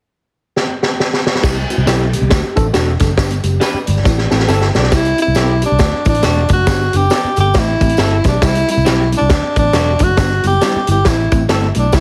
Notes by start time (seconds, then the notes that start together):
0.56 snare
0.83 snare
1.00 snare
1.13 snare
1.26 snare
1.35 snare
1.42 C2 C4 E4 G4, kick, snare, crash, tambourine, muted conga
1.57 high conga
1.70 C4 E4 F#4, closed hi-hat, tambourine, high conga
1.78 C2
1.86 B1 C4 E4 G4 A4, snare, closed hi-hat, tambourine, muted conga
2.13 G4, closed hi-hat, tambourine, high conga, low conga
2.21 C2, low conga
2.29 D2 A3 D4 F#4, kick, snare, closed hi-hat, tambourine, muted conga, high conga
2.44 muted picked electric bass stroke
2.55 A1 A3 D4 A4, kick, closed hi-hat, tambourine, muted conga, high conga
2.73 E1 A3 D4 F#4, snare, closed hi-hat, tambourine
2.99 F#1 A3 D4 A4, kick, snare, closed hi-hat, tambourine, high conga, low conga
3.17 G1 B3 D4 G4, kick, snare, closed hi-hat, tambourine
3.30 closed hi-hat, high conga
3.43 F#1 G4, closed hi-hat, tambourine, muted conga, high conga
3.60 D4 G4 B4, snare, closed hi-hat, tambourine, muted conga
3.74 muted picked electric bass stroke
3.86 G1 D5, closed hi-hat, tambourine, muted conga, high conga, low conga
3.98 low conga
4.04 A1 C4 E4 A4, kick, snare, tambourine, high conga
4.18 snare
4.31 A1 C4 E4 A4, snare, tambourine, muted conga, high conga
4.40 snare
4.47 G1 C4 E4 A4 G5, snare, tambourine
4.61 snare
4.74 B1 C4 D4 E4 A4 A5, snare, tambourine, muted conga, high conga, low conga
4.83 snare
4.92 C4 E4 G4, kick, snare, closed hi-hat, tambourine
5.05 closed hi-hat
5.18 C4 E4 G4, closed hi-hat, tambourine
5.22 E4
5.28 C2
5.35 B1 C4 E4 G4 A4, snare, closed hi-hat, tambourine
5.62 C4 E4 G4, closed hi-hat, tambourine
5.66 D4
5.72 C2
5.79 D2 A3 D4 F#4, kick, snare, closed hi-hat, tambourine
5.94 muted picked electric bass stroke
6.05 A1 A3 D4 E4, kick, closed hi-hat, tambourine
6.09 D4
6.15 closed hi-hat
6.23 E1 A3 D4 F#4 A4, snare, closed hi-hat, tambourine
6.49 F#1 A3 D4 F#4, kick, closed hi-hat, tambourine
6.53 F#4
6.67 G1 B3 D4 G4, kick, snare, closed hi-hat, tambourine
6.93 F#1 B3 D4 G4, closed hi-hat, tambourine
7.10 B3 D4 G4 A4, snare, closed hi-hat, tambourine
7.24 muted picked electric bass stroke
7.36 G1 B3 D4 A4, closed hi-hat, tambourine
7.40 G4
7.54 A1 A3 C4 E4, kick, snare, closed hi-hat, tambourine
7.59 E4
7.81 A1 A3 C4 G4, kick, closed hi-hat, tambourine
7.89 closed hi-hat
7.97 G1 A3 C4 E4 F#4 A4, snare, closed hi-hat, tambourine
8.24 B1 A3 C4 G4, kick, snare, closed hi-hat, tambourine
8.28 D4
8.42 C2 G3 C4 E4, kick, snare, closed hi-hat, tambourine
8.55 closed hi-hat
8.68 G3 C4 E4, closed hi-hat, tambourine
8.77 C2
8.85 G3 C4 E4 G4, snare, closed hi-hat, tambourine
9.12 G3 C4 E4, closed hi-hat, tambourine
9.17 C2 D4
9.29 D2 F#3 A3 D4, kick, snare, closed hi-hat, tambourine
9.44 muted picked electric bass stroke
9.56 A1 F#3 A3 B3 D4, kick, closed hi-hat, tambourine
9.73 E1 F#3 A3 D4 F#4, snare, closed hi-hat, tambourine
9.99 F#1 F#3 A3 D4, kick, closed hi-hat, tambourine
10.03 F#4
10.17 G1 G3 B3 D4, kick, snare, closed hi-hat, tambourine
10.44 F#1 G3 B3 E4 G4, closed hi-hat, tambourine
10.61 G3 B3 D4 E4 G4, snare, closed hi-hat, tambourine
10.76 muted picked electric bass stroke
10.87 G1 G3 B3 E4 G4, closed hi-hat, tambourine
11.05 A1 A3 C4 E4, kick, snare, closed hi-hat, tambourine
11.32 A1 A3 C4 E4, kick, closed hi-hat, tambourine
11.49 G1 A3 C4 E4 A4, snare, closed hi-hat, tambourine
11.75 B1 A3 C4 E4, closed hi-hat, tambourine
11.79 D4
11.92 C2 G3 C4 E4, kick, snare, closed hi-hat, tambourine, muted conga